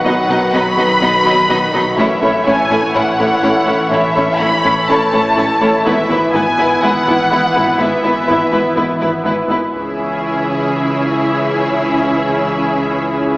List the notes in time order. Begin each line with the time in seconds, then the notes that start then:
Already playing: B1 D#3 F#3 F#4 B4
0.05 B1 B2 F#3 B3 D#4 D#5 F#5
0.29 B1 B2 F#3 B3 D#4 D#5
0.53 B1 B2 F#3 B3 D#4 D#5 B5
0.77 B1 B2 F#3 B3 D#4 D#5
1.02 B1 B2 F#3 B3 D#4 D#5
1.25 B1 B2 F#3 B3 D#4 D#5
1.49 B1 B2 F#3 B3 D#4 D#5
1.73 B1 B2 F#3 B3 D#4 D#5
1.97 A1 A2 E3 A3 C#4 E4 C#5 E5
2.22 A1 A2 A3 C#4 E4 C#5
2.46 A1 A2 A3 C#4 E4 C#5 G#5
2.71 A1 A2 A3 C#4 E4 C#5
2.95 A1 A2 A3 C#4 E4 C#5 F#5
3.19 A1 A2 A3 C#4 E4 C#5
3.43 A1 A2 A3 C#4 E4 C#5
3.67 A1 A2 A3 C#4 E4 C#5
3.92 A1 A2 A3 C#4 E4 C#5 E5
4.16 A1 A2 A3 C#4 E4 C#5
4.39 A1 A2 A3 C#4 E4 C#5 B5
4.64 A1 A2 A3 C#4 E4 C#5
4.87 A1 A2 A3 C#4 E4 C#5 A5
5.12 A1 A2 A3 C#4 E4 C#5
5.37 A1 A2 A3 C#4 E4 C#5
5.61 A1 A2 A3 C#4 E4 C#5
5.85 G#1 G#2 E3 B3 E4 B4 E5
6.09 G#1 G#2 B3 E4 B4
6.33 G#1 G#2 B3 E4 B4 G#5
6.58 G#1 G#2 B3 E4 B4
6.82 G#1 G#2 B3 E4 B4 F#5
7.07 G#1 G#2 B3 E4 B4
7.30 G#1 G#2 B3 E4 B4
7.55 G#1 G#2 B3 E4 B4
7.78 G#1 G#2 B3 E4 B4 E5
8.03 G#1 G#2 B3 E4 B4
8.28 G#1 G#2 B3 E4 B4
8.51 G#1 G#2 B3 E4 B4
8.76 G#1 G#2 B3 E4 B4
9.00 G#1 G#2 B3 E4 B4
9.24 G#1 G#2 B3 E4 B4
9.49 G#1 G#2 B3 E4 B4
9.73 C#2 C#3 E3 C#4 E4 G#4 E5